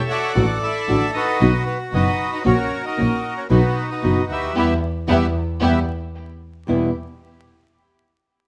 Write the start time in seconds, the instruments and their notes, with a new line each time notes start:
Already playing: bandoneon A4 C#5 E5
0.09 violin section F#4, bandoneon A4 D5 F#5
0.35 double bass A1, nylon-string guitar D3 A3 D4 F#4, string section A3 D4 F#4
0.61 violin section E4, bandoneon A4 E5
0.87 double bass A1, nylon-string guitar D3 A3 D4 F#4, string section A3 D4 F#4
1.13 violin section D#4, bandoneon F#4 B4 D#5
1.40 double bass B1, nylon-string guitar B2 F#3 B3 D#4 F#4, string section B3 D#4 F#4
1.66 violin section B3, bandoneon B4
1.92 double bass F#1, nylon-string guitar B2 F#3 B3 D#4 F#4, string section B3 D#4 F#4, violin section D#4, bandoneon F#4 B4 D#5
2.31 violin section D#4, bandoneon D#5
2.44 double bass A#1, nylon-string guitar A#3 C#4 F#4, string section A#3 C#4 F#4, violin section C#4, bandoneon F#4 A#4 C#5
2.83 violin section D#4, bandoneon F#4 A#4 D#5
2.97 double bass A#1, nylon-string guitar A#3 C#4 F#4, string section A#3 C#4 F#4
3.36 violin section C#4, bandoneon C#5
3.50 double bass B1, nylon-string guitar B2 F#3 B3 D#4 F#4, violin section B3, string section B3 D#4 F#4, bandoneon D#4 F#4 B4
3.90 violin section D#4, bandoneon F#4 B4 D#5
4.02 double bass F#1, nylon-string guitar B2 F#3 B3 D#4 F#4, string section B3 D#4 F#4
4.29 double bass D2, violin section E4, bandoneon G4 E5
4.33 bandoneon B4
4.55 double bass E2, nylon-string guitar G3 B3 E4, violin section B3 E4 G4, string section B3 E4 G4, bandoneon G4 B4 E5
5.07 double bass E2, nylon-string guitar G3 B3 E4, violin section B3 E4 G4, string section B3 E4 G4, bandoneon G4 B4 E5
5.61 double bass E2, nylon-string guitar G3 B3 E4, violin section B3 E4 G4, string section B3 E4 G4, bandoneon G4 B4 E5
6.67 nylon-string guitar E2 B2 E3 G3 B3 E4, double bass E2, string section B3 E4 G4